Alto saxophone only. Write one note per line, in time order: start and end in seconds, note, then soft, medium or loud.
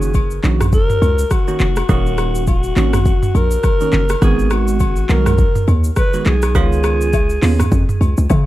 0.00 0.44 G#4 medium
0.74 1.34 A#4 loud
1.32 1.90 F#4 loud
1.90 2.44 F#4 loud
2.49 3.38 F#4 loud
3.36 4.23 A#4 loud
4.24 4.54 G#4 loud
4.53 5.12 F#4 loud
5.11 5.71 A#4 loud
5.98 6.28 B4 loud
6.27 6.55 G#4 loud
6.56 8.26 G#4 loud